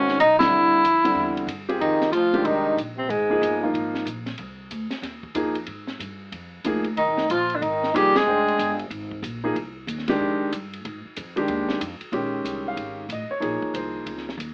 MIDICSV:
0, 0, Header, 1, 7, 480
1, 0, Start_track
1, 0, Tempo, 322407
1, 780, Time_signature, 4, 2, 24, 8
1, 21646, End_track
2, 0, Start_track
2, 0, Title_t, "Tenor saxophone"
2, 0, Program_c, 0, 66
2, 0, Note_on_c, 0, 61, 87
2, 277, Note_off_c, 0, 61, 0
2, 298, Note_on_c, 0, 63, 101
2, 570, Note_off_c, 0, 63, 0
2, 579, Note_on_c, 0, 64, 92
2, 2146, Note_off_c, 0, 64, 0
2, 2691, Note_on_c, 0, 63, 86
2, 3141, Note_off_c, 0, 63, 0
2, 3157, Note_on_c, 0, 65, 87
2, 3646, Note_on_c, 0, 63, 84
2, 3668, Note_off_c, 0, 65, 0
2, 4132, Note_off_c, 0, 63, 0
2, 4436, Note_on_c, 0, 60, 76
2, 4616, Note_on_c, 0, 56, 74
2, 4639, Note_off_c, 0, 60, 0
2, 5577, Note_off_c, 0, 56, 0
2, 10384, Note_on_c, 0, 63, 76
2, 10828, Note_off_c, 0, 63, 0
2, 10881, Note_on_c, 0, 65, 84
2, 11246, Note_on_c, 0, 62, 62
2, 11268, Note_off_c, 0, 65, 0
2, 11347, Note_on_c, 0, 63, 80
2, 11369, Note_off_c, 0, 62, 0
2, 11849, Note_on_c, 0, 67, 90
2, 11872, Note_off_c, 0, 63, 0
2, 12158, Note_on_c, 0, 68, 87
2, 12180, Note_off_c, 0, 67, 0
2, 13101, Note_off_c, 0, 68, 0
2, 21646, End_track
3, 0, Start_track
3, 0, Title_t, "Grand piano"
3, 0, Program_c, 1, 0
3, 0, Note_on_c, 1, 51, 69
3, 0, Note_on_c, 1, 56, 58
3, 0, Note_on_c, 1, 61, 61
3, 0, Note_on_c, 1, 66, 75
3, 265, Note_off_c, 1, 51, 0
3, 269, Note_off_c, 1, 56, 0
3, 274, Note_off_c, 1, 66, 0
3, 275, Note_off_c, 1, 61, 0
3, 589, Note_on_c, 1, 50, 72
3, 596, Note_on_c, 1, 55, 62
3, 597, Note_on_c, 1, 60, 61
3, 602, Note_on_c, 1, 64, 73
3, 1216, Note_off_c, 1, 50, 0
3, 1220, Note_off_c, 1, 55, 0
3, 1220, Note_off_c, 1, 60, 0
3, 1223, Note_off_c, 1, 64, 0
3, 1554, Note_on_c, 1, 50, 72
3, 1556, Note_on_c, 1, 55, 60
3, 1563, Note_on_c, 1, 60, 61
3, 1567, Note_on_c, 1, 64, 75
3, 2179, Note_off_c, 1, 50, 0
3, 2179, Note_off_c, 1, 55, 0
3, 2183, Note_off_c, 1, 60, 0
3, 2185, Note_off_c, 1, 64, 0
3, 2511, Note_on_c, 1, 67, 63
3, 2515, Note_on_c, 1, 60, 56
3, 2521, Note_on_c, 1, 65, 56
3, 2529, Note_on_c, 1, 68, 70
3, 3137, Note_off_c, 1, 67, 0
3, 3139, Note_off_c, 1, 60, 0
3, 3142, Note_off_c, 1, 65, 0
3, 3146, Note_off_c, 1, 68, 0
3, 3473, Note_on_c, 1, 51, 67
3, 3474, Note_on_c, 1, 56, 61
3, 3481, Note_on_c, 1, 62, 67
3, 3494, Note_on_c, 1, 67, 77
3, 4098, Note_off_c, 1, 51, 0
3, 4099, Note_off_c, 1, 56, 0
3, 4102, Note_off_c, 1, 62, 0
3, 4108, Note_off_c, 1, 67, 0
3, 4909, Note_on_c, 1, 58, 57
3, 4915, Note_on_c, 1, 53, 59
3, 4921, Note_on_c, 1, 63, 55
3, 4928, Note_on_c, 1, 68, 67
3, 5365, Note_off_c, 1, 58, 0
3, 5368, Note_off_c, 1, 53, 0
3, 5372, Note_off_c, 1, 63, 0
3, 5375, Note_off_c, 1, 68, 0
3, 5392, Note_on_c, 1, 53, 66
3, 5408, Note_on_c, 1, 58, 60
3, 5409, Note_on_c, 1, 65, 69
3, 5415, Note_on_c, 1, 63, 57
3, 6018, Note_off_c, 1, 53, 0
3, 6026, Note_off_c, 1, 58, 0
3, 6026, Note_off_c, 1, 65, 0
3, 6029, Note_off_c, 1, 63, 0
3, 7963, Note_on_c, 1, 53, 64
3, 7973, Note_on_c, 1, 58, 57
3, 7974, Note_on_c, 1, 63, 56
3, 7976, Note_on_c, 1, 68, 68
3, 8245, Note_off_c, 1, 53, 0
3, 8250, Note_off_c, 1, 58, 0
3, 8250, Note_off_c, 1, 63, 0
3, 8252, Note_off_c, 1, 68, 0
3, 9897, Note_on_c, 1, 53, 64
3, 9902, Note_on_c, 1, 58, 60
3, 9910, Note_on_c, 1, 63, 56
3, 9922, Note_on_c, 1, 68, 72
3, 10173, Note_off_c, 1, 53, 0
3, 10175, Note_off_c, 1, 58, 0
3, 10179, Note_off_c, 1, 63, 0
3, 10185, Note_off_c, 1, 68, 0
3, 11824, Note_on_c, 1, 53, 70
3, 11825, Note_on_c, 1, 58, 67
3, 11836, Note_on_c, 1, 63, 70
3, 11842, Note_on_c, 1, 68, 80
3, 12096, Note_off_c, 1, 53, 0
3, 12097, Note_off_c, 1, 58, 0
3, 12102, Note_off_c, 1, 63, 0
3, 12105, Note_off_c, 1, 68, 0
3, 12306, Note_on_c, 1, 56, 56
3, 12318, Note_on_c, 1, 62, 53
3, 12322, Note_on_c, 1, 79, 53
3, 12334, Note_on_c, 1, 72, 61
3, 13027, Note_off_c, 1, 56, 0
3, 13033, Note_off_c, 1, 62, 0
3, 13034, Note_off_c, 1, 79, 0
3, 13040, Note_off_c, 1, 72, 0
3, 14049, Note_on_c, 1, 53, 67
3, 14050, Note_on_c, 1, 58, 61
3, 14055, Note_on_c, 1, 63, 66
3, 14064, Note_on_c, 1, 68, 72
3, 14204, Note_off_c, 1, 53, 0
3, 14205, Note_off_c, 1, 58, 0
3, 14208, Note_off_c, 1, 63, 0
3, 14212, Note_off_c, 1, 68, 0
3, 15005, Note_on_c, 1, 51, 79
3, 15014, Note_on_c, 1, 56, 72
3, 15022, Note_on_c, 1, 62, 71
3, 15028, Note_on_c, 1, 67, 85
3, 15625, Note_off_c, 1, 51, 0
3, 15629, Note_off_c, 1, 56, 0
3, 15633, Note_off_c, 1, 62, 0
3, 15636, Note_off_c, 1, 67, 0
3, 16914, Note_on_c, 1, 51, 69
3, 16918, Note_on_c, 1, 62, 63
3, 16924, Note_on_c, 1, 56, 66
3, 16937, Note_on_c, 1, 67, 75
3, 17538, Note_off_c, 1, 51, 0
3, 17540, Note_off_c, 1, 62, 0
3, 17543, Note_off_c, 1, 56, 0
3, 17550, Note_off_c, 1, 67, 0
3, 18051, Note_on_c, 1, 51, 58
3, 18051, Note_on_c, 1, 56, 54
3, 18062, Note_on_c, 1, 61, 51
3, 18069, Note_on_c, 1, 67, 65
3, 18877, Note_on_c, 1, 77, 66
3, 19389, Note_off_c, 1, 56, 0
3, 19390, Note_off_c, 1, 51, 0
3, 19395, Note_off_c, 1, 61, 0
3, 19398, Note_off_c, 1, 67, 0
3, 19471, Note_off_c, 1, 77, 0
3, 19541, Note_on_c, 1, 75, 59
3, 19813, Note_on_c, 1, 73, 65
3, 19816, Note_off_c, 1, 75, 0
3, 19951, Note_on_c, 1, 53, 50
3, 19956, Note_on_c, 1, 58, 45
3, 19961, Note_on_c, 1, 63, 47
3, 19970, Note_on_c, 1, 68, 58
3, 20419, Note_off_c, 1, 73, 0
3, 20475, Note_on_c, 1, 72, 64
3, 21198, Note_off_c, 1, 72, 0
3, 21301, Note_off_c, 1, 53, 0
3, 21303, Note_off_c, 1, 58, 0
3, 21306, Note_off_c, 1, 63, 0
3, 21310, Note_off_c, 1, 68, 0
3, 21646, End_track
4, 0, Start_track
4, 0, Title_t, "Trombone"
4, 0, Program_c, 2, 57
4, 2689, Note_on_c, 2, 51, 77
4, 3139, Note_off_c, 2, 51, 0
4, 3179, Note_on_c, 2, 53, 77
4, 3662, Note_on_c, 2, 51, 71
4, 3685, Note_off_c, 2, 53, 0
4, 4140, Note_off_c, 2, 51, 0
4, 4403, Note_on_c, 2, 48, 68
4, 4595, Note_on_c, 2, 44, 65
4, 4618, Note_off_c, 2, 48, 0
4, 5567, Note_off_c, 2, 44, 0
4, 10379, Note_on_c, 2, 51, 65
4, 10826, Note_off_c, 2, 51, 0
4, 10869, Note_on_c, 2, 53, 71
4, 11282, Note_on_c, 2, 50, 53
4, 11304, Note_off_c, 2, 53, 0
4, 11431, Note_on_c, 2, 51, 73
4, 11453, Note_off_c, 2, 50, 0
4, 11869, Note_on_c, 2, 55, 78
4, 11891, Note_off_c, 2, 51, 0
4, 12180, Note_on_c, 2, 56, 86
4, 12202, Note_off_c, 2, 55, 0
4, 13112, Note_off_c, 2, 56, 0
4, 21646, End_track
5, 0, Start_track
5, 0, Title_t, "Upright bass"
5, 0, Program_c, 3, 32
5, 0, Note_on_c, 3, 32, 85
5, 277, Note_off_c, 3, 32, 0
5, 297, Note_on_c, 3, 35, 92
5, 764, Note_off_c, 3, 35, 0
5, 781, Note_on_c, 3, 36, 82
5, 1064, Note_off_c, 3, 36, 0
5, 1248, Note_on_c, 3, 41, 80
5, 1701, Note_off_c, 3, 41, 0
5, 1710, Note_on_c, 3, 40, 84
5, 2175, Note_off_c, 3, 40, 0
5, 2184, Note_on_c, 3, 43, 84
5, 2650, Note_off_c, 3, 43, 0
5, 2659, Note_on_c, 3, 41, 74
5, 3143, Note_off_c, 3, 41, 0
5, 3150, Note_on_c, 3, 38, 79
5, 3629, Note_off_c, 3, 38, 0
5, 3638, Note_on_c, 3, 36, 77
5, 4113, Note_off_c, 3, 36, 0
5, 4126, Note_on_c, 3, 34, 83
5, 4597, Note_off_c, 3, 34, 0
5, 4609, Note_on_c, 3, 32, 80
5, 5079, Note_off_c, 3, 32, 0
5, 5085, Note_on_c, 3, 31, 83
5, 5557, Note_off_c, 3, 31, 0
5, 5566, Note_on_c, 3, 32, 80
5, 6026, Note_off_c, 3, 32, 0
5, 6035, Note_on_c, 3, 34, 88
5, 6512, Note_off_c, 3, 34, 0
5, 6533, Note_on_c, 3, 36, 80
5, 7002, Note_off_c, 3, 36, 0
5, 7020, Note_on_c, 3, 38, 79
5, 7302, Note_off_c, 3, 38, 0
5, 7476, Note_on_c, 3, 39, 80
5, 7953, Note_off_c, 3, 39, 0
5, 7959, Note_on_c, 3, 41, 85
5, 8435, Note_off_c, 3, 41, 0
5, 8445, Note_on_c, 3, 44, 80
5, 8917, Note_off_c, 3, 44, 0
5, 8924, Note_on_c, 3, 43, 79
5, 9397, Note_off_c, 3, 43, 0
5, 9408, Note_on_c, 3, 41, 76
5, 9879, Note_off_c, 3, 41, 0
5, 9892, Note_on_c, 3, 38, 86
5, 10362, Note_off_c, 3, 38, 0
5, 10386, Note_on_c, 3, 36, 78
5, 10544, Note_on_c, 3, 32, 54
5, 10566, Note_off_c, 3, 36, 0
5, 10688, Note_off_c, 3, 32, 0
5, 10697, Note_on_c, 3, 29, 66
5, 10847, Note_off_c, 3, 29, 0
5, 10867, Note_on_c, 3, 34, 81
5, 11329, Note_off_c, 3, 34, 0
5, 11339, Note_on_c, 3, 32, 82
5, 11805, Note_off_c, 3, 32, 0
5, 11822, Note_on_c, 3, 36, 92
5, 12287, Note_off_c, 3, 36, 0
5, 12296, Note_on_c, 3, 29, 78
5, 12763, Note_off_c, 3, 29, 0
5, 12783, Note_on_c, 3, 31, 83
5, 13247, Note_off_c, 3, 31, 0
5, 13256, Note_on_c, 3, 32, 88
5, 13723, Note_off_c, 3, 32, 0
5, 13734, Note_on_c, 3, 34, 92
5, 14202, Note_off_c, 3, 34, 0
5, 14226, Note_on_c, 3, 36, 82
5, 14688, Note_off_c, 3, 36, 0
5, 14698, Note_on_c, 3, 39, 90
5, 15164, Note_off_c, 3, 39, 0
5, 15174, Note_on_c, 3, 41, 84
5, 15459, Note_off_c, 3, 41, 0
5, 15669, Note_on_c, 3, 43, 94
5, 16129, Note_off_c, 3, 43, 0
5, 16151, Note_on_c, 3, 44, 85
5, 16428, Note_off_c, 3, 44, 0
5, 16634, Note_on_c, 3, 41, 90
5, 17092, Note_off_c, 3, 41, 0
5, 17098, Note_on_c, 3, 39, 87
5, 17564, Note_off_c, 3, 39, 0
5, 17577, Note_on_c, 3, 41, 93
5, 17861, Note_off_c, 3, 41, 0
5, 18043, Note_on_c, 3, 34, 79
5, 18516, Note_off_c, 3, 34, 0
5, 18530, Note_on_c, 3, 36, 78
5, 18999, Note_off_c, 3, 36, 0
5, 19007, Note_on_c, 3, 32, 76
5, 19478, Note_off_c, 3, 32, 0
5, 19485, Note_on_c, 3, 33, 84
5, 19774, Note_off_c, 3, 33, 0
5, 19986, Note_on_c, 3, 34, 78
5, 20266, Note_off_c, 3, 34, 0
5, 20453, Note_on_c, 3, 36, 81
5, 20922, Note_off_c, 3, 36, 0
5, 20934, Note_on_c, 3, 37, 83
5, 21393, Note_off_c, 3, 37, 0
5, 21402, Note_on_c, 3, 39, 87
5, 21646, Note_off_c, 3, 39, 0
5, 21646, End_track
6, 0, Start_track
6, 0, Title_t, "Muted upright bass strokes"
6, 1076, Note_on_c, 9, 29, 38
6, 1225, Note_off_c, 9, 29, 0
6, 7324, Note_on_c, 9, 29, 39
6, 7472, Note_off_c, 9, 29, 0
6, 15506, Note_on_c, 9, 29, 42
6, 15654, Note_off_c, 9, 29, 0
6, 16458, Note_on_c, 9, 29, 39
6, 16607, Note_off_c, 9, 29, 0
6, 17882, Note_on_c, 9, 29, 38
6, 18031, Note_off_c, 9, 29, 0
6, 19795, Note_on_c, 9, 29, 35
6, 19944, Note_off_c, 9, 29, 0
6, 20279, Note_on_c, 9, 29, 35
6, 20428, Note_off_c, 9, 29, 0
6, 21646, End_track
7, 0, Start_track
7, 0, Title_t, "Drums"
7, 123, Note_on_c, 9, 38, 47
7, 272, Note_off_c, 9, 38, 0
7, 297, Note_on_c, 9, 44, 56
7, 297, Note_on_c, 9, 51, 68
7, 446, Note_off_c, 9, 44, 0
7, 446, Note_off_c, 9, 51, 0
7, 599, Note_on_c, 9, 38, 85
7, 602, Note_on_c, 9, 51, 68
7, 748, Note_off_c, 9, 38, 0
7, 751, Note_off_c, 9, 51, 0
7, 1261, Note_on_c, 9, 44, 56
7, 1261, Note_on_c, 9, 51, 72
7, 1409, Note_off_c, 9, 44, 0
7, 1409, Note_off_c, 9, 51, 0
7, 1564, Note_on_c, 9, 51, 66
7, 1713, Note_off_c, 9, 51, 0
7, 2041, Note_on_c, 9, 51, 47
7, 2190, Note_off_c, 9, 51, 0
7, 2209, Note_on_c, 9, 44, 57
7, 2209, Note_on_c, 9, 51, 71
7, 2358, Note_off_c, 9, 44, 0
7, 2358, Note_off_c, 9, 51, 0
7, 2519, Note_on_c, 9, 51, 49
7, 2668, Note_off_c, 9, 51, 0
7, 2699, Note_on_c, 9, 51, 53
7, 2848, Note_off_c, 9, 51, 0
7, 2999, Note_on_c, 9, 38, 51
7, 3002, Note_on_c, 9, 51, 41
7, 3148, Note_off_c, 9, 38, 0
7, 3151, Note_off_c, 9, 51, 0
7, 3168, Note_on_c, 9, 44, 52
7, 3168, Note_on_c, 9, 51, 62
7, 3317, Note_off_c, 9, 44, 0
7, 3317, Note_off_c, 9, 51, 0
7, 3479, Note_on_c, 9, 51, 39
7, 3628, Note_off_c, 9, 51, 0
7, 3645, Note_on_c, 9, 51, 57
7, 3794, Note_off_c, 9, 51, 0
7, 4142, Note_on_c, 9, 44, 48
7, 4142, Note_on_c, 9, 51, 58
7, 4291, Note_off_c, 9, 44, 0
7, 4291, Note_off_c, 9, 51, 0
7, 4617, Note_on_c, 9, 51, 54
7, 4766, Note_off_c, 9, 51, 0
7, 5104, Note_on_c, 9, 44, 53
7, 5104, Note_on_c, 9, 51, 63
7, 5253, Note_off_c, 9, 44, 0
7, 5253, Note_off_c, 9, 51, 0
7, 5580, Note_on_c, 9, 51, 55
7, 5728, Note_off_c, 9, 51, 0
7, 5873, Note_on_c, 9, 38, 43
7, 6022, Note_off_c, 9, 38, 0
7, 6052, Note_on_c, 9, 44, 56
7, 6052, Note_on_c, 9, 51, 61
7, 6201, Note_off_c, 9, 44, 0
7, 6201, Note_off_c, 9, 51, 0
7, 6346, Note_on_c, 9, 38, 39
7, 6349, Note_on_c, 9, 51, 42
7, 6495, Note_off_c, 9, 38, 0
7, 6498, Note_off_c, 9, 51, 0
7, 6516, Note_on_c, 9, 51, 52
7, 6664, Note_off_c, 9, 51, 0
7, 7008, Note_on_c, 9, 44, 53
7, 7008, Note_on_c, 9, 51, 63
7, 7157, Note_off_c, 9, 44, 0
7, 7157, Note_off_c, 9, 51, 0
7, 7303, Note_on_c, 9, 38, 49
7, 7306, Note_on_c, 9, 51, 43
7, 7451, Note_off_c, 9, 38, 0
7, 7454, Note_off_c, 9, 51, 0
7, 7489, Note_on_c, 9, 38, 36
7, 7492, Note_on_c, 9, 51, 53
7, 7638, Note_off_c, 9, 38, 0
7, 7641, Note_off_c, 9, 51, 0
7, 7790, Note_on_c, 9, 36, 54
7, 7939, Note_off_c, 9, 36, 0
7, 7962, Note_on_c, 9, 44, 59
7, 7962, Note_on_c, 9, 51, 67
7, 8111, Note_off_c, 9, 44, 0
7, 8111, Note_off_c, 9, 51, 0
7, 8266, Note_on_c, 9, 51, 47
7, 8414, Note_off_c, 9, 51, 0
7, 8434, Note_on_c, 9, 51, 56
7, 8583, Note_off_c, 9, 51, 0
7, 8745, Note_on_c, 9, 38, 41
7, 8894, Note_off_c, 9, 38, 0
7, 8936, Note_on_c, 9, 44, 48
7, 8936, Note_on_c, 9, 51, 66
7, 9085, Note_off_c, 9, 44, 0
7, 9085, Note_off_c, 9, 51, 0
7, 9413, Note_on_c, 9, 51, 59
7, 9562, Note_off_c, 9, 51, 0
7, 9892, Note_on_c, 9, 44, 54
7, 9892, Note_on_c, 9, 51, 64
7, 10041, Note_off_c, 9, 44, 0
7, 10041, Note_off_c, 9, 51, 0
7, 10188, Note_on_c, 9, 51, 44
7, 10337, Note_off_c, 9, 51, 0
7, 10378, Note_on_c, 9, 51, 55
7, 10527, Note_off_c, 9, 51, 0
7, 10682, Note_on_c, 9, 38, 49
7, 10830, Note_off_c, 9, 38, 0
7, 10864, Note_on_c, 9, 44, 53
7, 10864, Note_on_c, 9, 51, 68
7, 11013, Note_off_c, 9, 44, 0
7, 11013, Note_off_c, 9, 51, 0
7, 11162, Note_on_c, 9, 51, 45
7, 11311, Note_off_c, 9, 51, 0
7, 11348, Note_on_c, 9, 51, 57
7, 11497, Note_off_c, 9, 51, 0
7, 11662, Note_on_c, 9, 38, 40
7, 11811, Note_off_c, 9, 38, 0
7, 11845, Note_on_c, 9, 44, 49
7, 11845, Note_on_c, 9, 51, 70
7, 11993, Note_off_c, 9, 44, 0
7, 11993, Note_off_c, 9, 51, 0
7, 12144, Note_on_c, 9, 38, 84
7, 12147, Note_on_c, 9, 51, 65
7, 12293, Note_off_c, 9, 38, 0
7, 12296, Note_off_c, 9, 51, 0
7, 12629, Note_on_c, 9, 51, 47
7, 12778, Note_off_c, 9, 51, 0
7, 12793, Note_on_c, 9, 44, 62
7, 12793, Note_on_c, 9, 51, 66
7, 12942, Note_off_c, 9, 44, 0
7, 12942, Note_off_c, 9, 51, 0
7, 13091, Note_on_c, 9, 51, 43
7, 13240, Note_off_c, 9, 51, 0
7, 13265, Note_on_c, 9, 51, 59
7, 13414, Note_off_c, 9, 51, 0
7, 13569, Note_on_c, 9, 36, 52
7, 13718, Note_off_c, 9, 36, 0
7, 13751, Note_on_c, 9, 44, 58
7, 13751, Note_on_c, 9, 51, 64
7, 13900, Note_off_c, 9, 44, 0
7, 13900, Note_off_c, 9, 51, 0
7, 14232, Note_on_c, 9, 51, 55
7, 14381, Note_off_c, 9, 51, 0
7, 14713, Note_on_c, 9, 44, 58
7, 14713, Note_on_c, 9, 51, 68
7, 14862, Note_off_c, 9, 44, 0
7, 14862, Note_off_c, 9, 51, 0
7, 14865, Note_on_c, 9, 38, 28
7, 15004, Note_on_c, 9, 51, 64
7, 15014, Note_off_c, 9, 38, 0
7, 15015, Note_on_c, 9, 38, 42
7, 15152, Note_off_c, 9, 51, 0
7, 15164, Note_off_c, 9, 38, 0
7, 15670, Note_on_c, 9, 44, 61
7, 15670, Note_on_c, 9, 51, 68
7, 15819, Note_off_c, 9, 44, 0
7, 15819, Note_off_c, 9, 51, 0
7, 15980, Note_on_c, 9, 51, 47
7, 16129, Note_off_c, 9, 51, 0
7, 16153, Note_on_c, 9, 51, 59
7, 16302, Note_off_c, 9, 51, 0
7, 16621, Note_on_c, 9, 44, 57
7, 16621, Note_on_c, 9, 51, 74
7, 16770, Note_off_c, 9, 44, 0
7, 16770, Note_off_c, 9, 51, 0
7, 16923, Note_on_c, 9, 51, 45
7, 17072, Note_off_c, 9, 51, 0
7, 17091, Note_on_c, 9, 51, 59
7, 17240, Note_off_c, 9, 51, 0
7, 17399, Note_on_c, 9, 38, 58
7, 17547, Note_off_c, 9, 38, 0
7, 17583, Note_on_c, 9, 44, 64
7, 17583, Note_on_c, 9, 51, 72
7, 17732, Note_off_c, 9, 44, 0
7, 17732, Note_off_c, 9, 51, 0
7, 17876, Note_on_c, 9, 51, 50
7, 18025, Note_off_c, 9, 51, 0
7, 18052, Note_on_c, 9, 51, 52
7, 18201, Note_off_c, 9, 51, 0
7, 18541, Note_on_c, 9, 44, 56
7, 18541, Note_on_c, 9, 51, 59
7, 18690, Note_off_c, 9, 44, 0
7, 18690, Note_off_c, 9, 51, 0
7, 19014, Note_on_c, 9, 51, 56
7, 19163, Note_off_c, 9, 51, 0
7, 19498, Note_on_c, 9, 44, 58
7, 19498, Note_on_c, 9, 51, 60
7, 19647, Note_off_c, 9, 44, 0
7, 19647, Note_off_c, 9, 51, 0
7, 19982, Note_on_c, 9, 51, 53
7, 20131, Note_off_c, 9, 51, 0
7, 20285, Note_on_c, 9, 36, 51
7, 20434, Note_off_c, 9, 36, 0
7, 20463, Note_on_c, 9, 44, 44
7, 20463, Note_on_c, 9, 51, 66
7, 20612, Note_off_c, 9, 44, 0
7, 20612, Note_off_c, 9, 51, 0
7, 20940, Note_on_c, 9, 51, 55
7, 21089, Note_off_c, 9, 51, 0
7, 21106, Note_on_c, 9, 38, 26
7, 21255, Note_off_c, 9, 38, 0
7, 21273, Note_on_c, 9, 38, 42
7, 21422, Note_off_c, 9, 38, 0
7, 21437, Note_on_c, 9, 44, 46
7, 21437, Note_on_c, 9, 51, 63
7, 21586, Note_off_c, 9, 44, 0
7, 21586, Note_off_c, 9, 51, 0
7, 21646, End_track
0, 0, End_of_file